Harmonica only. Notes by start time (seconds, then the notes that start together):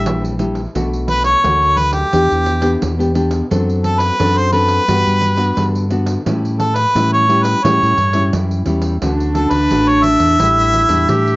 Already playing: E5
1.09 B4
1.25 C#5
1.78 B4
1.93 G4
3.83 A4
4.00 B4
4.38 C5
4.53 B4
6.59 A4
6.75 B4
7.13 C#5
7.43 B4
7.63 C#5
9.35 A4
9.50 B4
9.88 C#5
10.03 E5